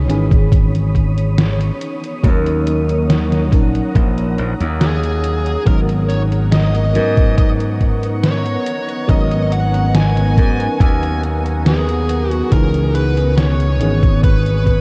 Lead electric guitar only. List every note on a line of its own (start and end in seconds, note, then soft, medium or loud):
4.81 5.63 G#4 medium
5.66 5.78 A#4 medium
6.09 6.21 C#5 medium
6.52 7.34 D#5 loud
7.38 7.49 D#5 medium
8.24 9.09 C#5 medium
9.10 9.54 D#5 medium
9.52 9.92 F#5 loud
9.95 10.80 G#5 loud
10.81 11.21 G#5 loud
11.67 12.30 G#4 medium
12.30 12.53 F#4 medium
12.53 12.95 A#4 loud
12.95 13.39 B4 loud
13.38 14.20 C#5 loud
14.24 14.81 B4 loud